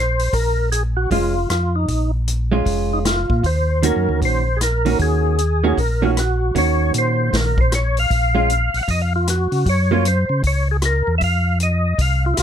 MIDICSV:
0, 0, Header, 1, 5, 480
1, 0, Start_track
1, 0, Key_signature, -5, "minor"
1, 0, Tempo, 388350
1, 412, Time_signature, 4, 2, 24, 8
1, 15360, End_track
2, 0, Start_track
2, 0, Title_t, "Tonewheel organ"
2, 0, Program_c, 0, 16
2, 0, Note_on_c, 0, 72, 84
2, 415, Note_on_c, 0, 70, 80
2, 422, Note_off_c, 0, 72, 0
2, 860, Note_off_c, 0, 70, 0
2, 888, Note_on_c, 0, 68, 74
2, 1026, Note_off_c, 0, 68, 0
2, 1193, Note_on_c, 0, 66, 86
2, 1358, Note_off_c, 0, 66, 0
2, 1385, Note_on_c, 0, 65, 68
2, 1841, Note_off_c, 0, 65, 0
2, 1856, Note_on_c, 0, 65, 73
2, 2169, Note_off_c, 0, 65, 0
2, 2170, Note_on_c, 0, 63, 65
2, 2612, Note_off_c, 0, 63, 0
2, 3625, Note_on_c, 0, 63, 62
2, 3699, Note_off_c, 0, 63, 0
2, 3798, Note_on_c, 0, 65, 73
2, 4276, Note_on_c, 0, 72, 74
2, 4282, Note_off_c, 0, 65, 0
2, 4760, Note_on_c, 0, 70, 66
2, 4761, Note_off_c, 0, 72, 0
2, 5196, Note_off_c, 0, 70, 0
2, 5256, Note_on_c, 0, 72, 73
2, 5643, Note_on_c, 0, 68, 59
2, 5666, Note_off_c, 0, 72, 0
2, 5702, Note_off_c, 0, 68, 0
2, 5725, Note_on_c, 0, 70, 85
2, 6160, Note_off_c, 0, 70, 0
2, 6202, Note_on_c, 0, 68, 84
2, 7159, Note_on_c, 0, 70, 69
2, 7180, Note_off_c, 0, 68, 0
2, 7464, Note_off_c, 0, 70, 0
2, 7483, Note_on_c, 0, 65, 74
2, 7554, Note_off_c, 0, 65, 0
2, 7661, Note_on_c, 0, 66, 73
2, 8089, Note_off_c, 0, 66, 0
2, 8136, Note_on_c, 0, 73, 89
2, 8566, Note_off_c, 0, 73, 0
2, 8631, Note_on_c, 0, 72, 81
2, 9100, Note_off_c, 0, 72, 0
2, 9102, Note_on_c, 0, 70, 76
2, 9395, Note_off_c, 0, 70, 0
2, 9403, Note_on_c, 0, 72, 77
2, 9564, Note_off_c, 0, 72, 0
2, 9577, Note_on_c, 0, 73, 80
2, 9873, Note_off_c, 0, 73, 0
2, 9882, Note_on_c, 0, 77, 102
2, 10840, Note_on_c, 0, 78, 78
2, 10873, Note_off_c, 0, 77, 0
2, 10911, Note_on_c, 0, 77, 82
2, 10915, Note_off_c, 0, 78, 0
2, 10999, Note_off_c, 0, 77, 0
2, 11005, Note_on_c, 0, 75, 76
2, 11143, Note_on_c, 0, 77, 85
2, 11145, Note_off_c, 0, 75, 0
2, 11285, Note_off_c, 0, 77, 0
2, 11316, Note_on_c, 0, 65, 73
2, 11464, Note_off_c, 0, 65, 0
2, 11495, Note_on_c, 0, 66, 77
2, 11970, Note_off_c, 0, 66, 0
2, 11982, Note_on_c, 0, 73, 84
2, 12453, Note_off_c, 0, 73, 0
2, 12453, Note_on_c, 0, 72, 82
2, 12882, Note_off_c, 0, 72, 0
2, 12940, Note_on_c, 0, 73, 83
2, 13203, Note_off_c, 0, 73, 0
2, 13241, Note_on_c, 0, 68, 76
2, 13311, Note_off_c, 0, 68, 0
2, 13416, Note_on_c, 0, 70, 77
2, 13784, Note_off_c, 0, 70, 0
2, 13819, Note_on_c, 0, 76, 75
2, 13868, Note_off_c, 0, 76, 0
2, 13891, Note_on_c, 0, 77, 91
2, 14319, Note_off_c, 0, 77, 0
2, 14372, Note_on_c, 0, 75, 69
2, 14845, Note_off_c, 0, 75, 0
2, 14848, Note_on_c, 0, 77, 75
2, 15144, Note_off_c, 0, 77, 0
2, 15155, Note_on_c, 0, 65, 75
2, 15250, Note_off_c, 0, 65, 0
2, 15253, Note_on_c, 0, 64, 56
2, 15304, Note_off_c, 0, 64, 0
2, 15322, Note_on_c, 0, 65, 74
2, 15360, Note_off_c, 0, 65, 0
2, 15360, End_track
3, 0, Start_track
3, 0, Title_t, "Hollow-body jazz guitar"
3, 0, Program_c, 1, 26
3, 1376, Note_on_c, 1, 56, 45
3, 1385, Note_on_c, 1, 61, 45
3, 1385, Note_on_c, 1, 65, 52
3, 1649, Note_off_c, 1, 56, 0
3, 1654, Note_off_c, 1, 61, 0
3, 1654, Note_off_c, 1, 65, 0
3, 3109, Note_on_c, 1, 56, 67
3, 3117, Note_on_c, 1, 61, 70
3, 3124, Note_on_c, 1, 65, 78
3, 3735, Note_off_c, 1, 56, 0
3, 3739, Note_off_c, 1, 61, 0
3, 3743, Note_off_c, 1, 65, 0
3, 4728, Note_on_c, 1, 51, 52
3, 4737, Note_on_c, 1, 58, 56
3, 4742, Note_on_c, 1, 61, 61
3, 4746, Note_on_c, 1, 66, 61
3, 5458, Note_off_c, 1, 51, 0
3, 5463, Note_off_c, 1, 58, 0
3, 5465, Note_off_c, 1, 61, 0
3, 5467, Note_off_c, 1, 66, 0
3, 5997, Note_on_c, 1, 51, 42
3, 6007, Note_on_c, 1, 58, 50
3, 6009, Note_on_c, 1, 61, 59
3, 6013, Note_on_c, 1, 66, 51
3, 6621, Note_off_c, 1, 51, 0
3, 6626, Note_off_c, 1, 58, 0
3, 6627, Note_off_c, 1, 61, 0
3, 6629, Note_off_c, 1, 66, 0
3, 6966, Note_on_c, 1, 51, 70
3, 6971, Note_on_c, 1, 58, 77
3, 6978, Note_on_c, 1, 61, 80
3, 6981, Note_on_c, 1, 66, 78
3, 7123, Note_off_c, 1, 51, 0
3, 7126, Note_off_c, 1, 58, 0
3, 7129, Note_off_c, 1, 61, 0
3, 7130, Note_off_c, 1, 66, 0
3, 7441, Note_on_c, 1, 51, 63
3, 7445, Note_on_c, 1, 58, 65
3, 7450, Note_on_c, 1, 61, 72
3, 7455, Note_on_c, 1, 66, 70
3, 7601, Note_off_c, 1, 51, 0
3, 7603, Note_off_c, 1, 58, 0
3, 7605, Note_off_c, 1, 61, 0
3, 7608, Note_off_c, 1, 66, 0
3, 8094, Note_on_c, 1, 51, 46
3, 8096, Note_on_c, 1, 58, 44
3, 8105, Note_on_c, 1, 61, 58
3, 8105, Note_on_c, 1, 66, 51
3, 9433, Note_off_c, 1, 51, 0
3, 9434, Note_off_c, 1, 58, 0
3, 9438, Note_off_c, 1, 61, 0
3, 9438, Note_off_c, 1, 66, 0
3, 10316, Note_on_c, 1, 56, 54
3, 10323, Note_on_c, 1, 61, 59
3, 10326, Note_on_c, 1, 65, 62
3, 10478, Note_off_c, 1, 56, 0
3, 10481, Note_off_c, 1, 61, 0
3, 10483, Note_off_c, 1, 65, 0
3, 12250, Note_on_c, 1, 54, 66
3, 12257, Note_on_c, 1, 58, 73
3, 12260, Note_on_c, 1, 61, 67
3, 12270, Note_on_c, 1, 65, 78
3, 12403, Note_off_c, 1, 54, 0
3, 12407, Note_off_c, 1, 58, 0
3, 12408, Note_off_c, 1, 61, 0
3, 12413, Note_off_c, 1, 65, 0
3, 15360, End_track
4, 0, Start_track
4, 0, Title_t, "Tonewheel organ"
4, 0, Program_c, 2, 16
4, 0, Note_on_c, 2, 34, 69
4, 362, Note_off_c, 2, 34, 0
4, 405, Note_on_c, 2, 34, 70
4, 1321, Note_off_c, 2, 34, 0
4, 1367, Note_on_c, 2, 29, 72
4, 1817, Note_off_c, 2, 29, 0
4, 1851, Note_on_c, 2, 41, 69
4, 2299, Note_off_c, 2, 41, 0
4, 2326, Note_on_c, 2, 34, 78
4, 3243, Note_off_c, 2, 34, 0
4, 3282, Note_on_c, 2, 29, 71
4, 4026, Note_off_c, 2, 29, 0
4, 4074, Note_on_c, 2, 46, 63
4, 4240, Note_off_c, 2, 46, 0
4, 4245, Note_on_c, 2, 39, 77
4, 4847, Note_off_c, 2, 39, 0
4, 4896, Note_on_c, 2, 42, 47
4, 5046, Note_off_c, 2, 42, 0
4, 5054, Note_on_c, 2, 38, 65
4, 5205, Note_off_c, 2, 38, 0
4, 5211, Note_on_c, 2, 34, 68
4, 6128, Note_off_c, 2, 34, 0
4, 6172, Note_on_c, 2, 39, 81
4, 7088, Note_off_c, 2, 39, 0
4, 7137, Note_on_c, 2, 34, 72
4, 8051, Note_off_c, 2, 34, 0
4, 8100, Note_on_c, 2, 39, 76
4, 8547, Note_off_c, 2, 39, 0
4, 8580, Note_on_c, 2, 46, 70
4, 9027, Note_off_c, 2, 46, 0
4, 9058, Note_on_c, 2, 34, 78
4, 9971, Note_off_c, 2, 34, 0
4, 10016, Note_on_c, 2, 34, 83
4, 10754, Note_off_c, 2, 34, 0
4, 10804, Note_on_c, 2, 34, 36
4, 10892, Note_off_c, 2, 34, 0
4, 10974, Note_on_c, 2, 41, 69
4, 11711, Note_off_c, 2, 41, 0
4, 11764, Note_on_c, 2, 49, 62
4, 11926, Note_off_c, 2, 49, 0
4, 11936, Note_on_c, 2, 42, 79
4, 12672, Note_off_c, 2, 42, 0
4, 12722, Note_on_c, 2, 49, 56
4, 12884, Note_off_c, 2, 49, 0
4, 12894, Note_on_c, 2, 37, 64
4, 13629, Note_off_c, 2, 37, 0
4, 13685, Note_on_c, 2, 40, 71
4, 13845, Note_off_c, 2, 40, 0
4, 13856, Note_on_c, 2, 41, 81
4, 14765, Note_off_c, 2, 41, 0
4, 14809, Note_on_c, 2, 36, 71
4, 15256, Note_off_c, 2, 36, 0
4, 15295, Note_on_c, 2, 36, 64
4, 15360, Note_off_c, 2, 36, 0
4, 15360, End_track
5, 0, Start_track
5, 0, Title_t, "Drums"
5, 240, Note_on_c, 9, 46, 38
5, 364, Note_off_c, 9, 46, 0
5, 409, Note_on_c, 9, 36, 27
5, 411, Note_on_c, 9, 46, 43
5, 533, Note_off_c, 9, 36, 0
5, 534, Note_off_c, 9, 46, 0
5, 892, Note_on_c, 9, 42, 51
5, 1015, Note_off_c, 9, 42, 0
5, 1370, Note_on_c, 9, 36, 31
5, 1373, Note_on_c, 9, 46, 45
5, 1494, Note_off_c, 9, 36, 0
5, 1497, Note_off_c, 9, 46, 0
5, 1853, Note_on_c, 9, 37, 59
5, 1853, Note_on_c, 9, 42, 50
5, 1976, Note_off_c, 9, 37, 0
5, 1976, Note_off_c, 9, 42, 0
5, 2328, Note_on_c, 9, 46, 39
5, 2330, Note_on_c, 9, 36, 26
5, 2451, Note_off_c, 9, 46, 0
5, 2453, Note_off_c, 9, 36, 0
5, 2813, Note_on_c, 9, 42, 50
5, 2937, Note_off_c, 9, 42, 0
5, 3288, Note_on_c, 9, 36, 32
5, 3291, Note_on_c, 9, 46, 38
5, 3412, Note_off_c, 9, 36, 0
5, 3415, Note_off_c, 9, 46, 0
5, 3773, Note_on_c, 9, 37, 56
5, 3773, Note_on_c, 9, 38, 32
5, 3773, Note_on_c, 9, 42, 49
5, 3896, Note_off_c, 9, 37, 0
5, 3896, Note_off_c, 9, 38, 0
5, 3896, Note_off_c, 9, 42, 0
5, 4075, Note_on_c, 9, 36, 46
5, 4199, Note_off_c, 9, 36, 0
5, 4250, Note_on_c, 9, 36, 28
5, 4254, Note_on_c, 9, 46, 35
5, 4373, Note_off_c, 9, 36, 0
5, 4377, Note_off_c, 9, 46, 0
5, 4735, Note_on_c, 9, 42, 50
5, 4858, Note_off_c, 9, 42, 0
5, 5212, Note_on_c, 9, 36, 33
5, 5218, Note_on_c, 9, 46, 41
5, 5336, Note_off_c, 9, 36, 0
5, 5342, Note_off_c, 9, 46, 0
5, 5696, Note_on_c, 9, 37, 54
5, 5696, Note_on_c, 9, 42, 54
5, 5820, Note_off_c, 9, 37, 0
5, 5820, Note_off_c, 9, 42, 0
5, 6003, Note_on_c, 9, 46, 36
5, 6126, Note_off_c, 9, 46, 0
5, 6172, Note_on_c, 9, 46, 34
5, 6174, Note_on_c, 9, 36, 28
5, 6295, Note_off_c, 9, 46, 0
5, 6297, Note_off_c, 9, 36, 0
5, 6656, Note_on_c, 9, 42, 45
5, 6780, Note_off_c, 9, 42, 0
5, 7140, Note_on_c, 9, 36, 29
5, 7146, Note_on_c, 9, 46, 43
5, 7263, Note_off_c, 9, 36, 0
5, 7269, Note_off_c, 9, 46, 0
5, 7625, Note_on_c, 9, 37, 60
5, 7625, Note_on_c, 9, 42, 46
5, 7749, Note_off_c, 9, 37, 0
5, 7749, Note_off_c, 9, 42, 0
5, 8101, Note_on_c, 9, 36, 28
5, 8103, Note_on_c, 9, 46, 40
5, 8225, Note_off_c, 9, 36, 0
5, 8226, Note_off_c, 9, 46, 0
5, 8577, Note_on_c, 9, 42, 48
5, 8700, Note_off_c, 9, 42, 0
5, 9061, Note_on_c, 9, 36, 30
5, 9065, Note_on_c, 9, 38, 35
5, 9065, Note_on_c, 9, 46, 44
5, 9184, Note_off_c, 9, 36, 0
5, 9189, Note_off_c, 9, 38, 0
5, 9189, Note_off_c, 9, 46, 0
5, 9366, Note_on_c, 9, 36, 51
5, 9489, Note_off_c, 9, 36, 0
5, 9542, Note_on_c, 9, 37, 54
5, 9542, Note_on_c, 9, 42, 48
5, 9666, Note_off_c, 9, 37, 0
5, 9666, Note_off_c, 9, 42, 0
5, 9849, Note_on_c, 9, 46, 39
5, 9973, Note_off_c, 9, 46, 0
5, 10020, Note_on_c, 9, 36, 29
5, 10021, Note_on_c, 9, 46, 39
5, 10143, Note_off_c, 9, 36, 0
5, 10145, Note_off_c, 9, 46, 0
5, 10502, Note_on_c, 9, 42, 44
5, 10625, Note_off_c, 9, 42, 0
5, 10805, Note_on_c, 9, 46, 35
5, 10929, Note_off_c, 9, 46, 0
5, 10979, Note_on_c, 9, 36, 34
5, 10980, Note_on_c, 9, 46, 43
5, 11102, Note_off_c, 9, 36, 0
5, 11103, Note_off_c, 9, 46, 0
5, 11465, Note_on_c, 9, 37, 50
5, 11465, Note_on_c, 9, 42, 52
5, 11588, Note_off_c, 9, 37, 0
5, 11588, Note_off_c, 9, 42, 0
5, 11766, Note_on_c, 9, 46, 33
5, 11889, Note_off_c, 9, 46, 0
5, 11940, Note_on_c, 9, 36, 31
5, 11943, Note_on_c, 9, 46, 39
5, 12064, Note_off_c, 9, 36, 0
5, 12067, Note_off_c, 9, 46, 0
5, 12423, Note_on_c, 9, 42, 48
5, 12547, Note_off_c, 9, 42, 0
5, 12898, Note_on_c, 9, 46, 42
5, 12899, Note_on_c, 9, 36, 29
5, 13021, Note_off_c, 9, 46, 0
5, 13022, Note_off_c, 9, 36, 0
5, 13372, Note_on_c, 9, 37, 56
5, 13372, Note_on_c, 9, 42, 48
5, 13495, Note_off_c, 9, 37, 0
5, 13495, Note_off_c, 9, 42, 0
5, 13855, Note_on_c, 9, 46, 38
5, 13856, Note_on_c, 9, 36, 30
5, 13979, Note_off_c, 9, 46, 0
5, 13980, Note_off_c, 9, 36, 0
5, 14336, Note_on_c, 9, 42, 47
5, 14460, Note_off_c, 9, 42, 0
5, 14815, Note_on_c, 9, 36, 32
5, 14816, Note_on_c, 9, 46, 43
5, 14939, Note_off_c, 9, 36, 0
5, 14940, Note_off_c, 9, 46, 0
5, 15291, Note_on_c, 9, 37, 57
5, 15291, Note_on_c, 9, 42, 51
5, 15360, Note_off_c, 9, 37, 0
5, 15360, Note_off_c, 9, 42, 0
5, 15360, End_track
0, 0, End_of_file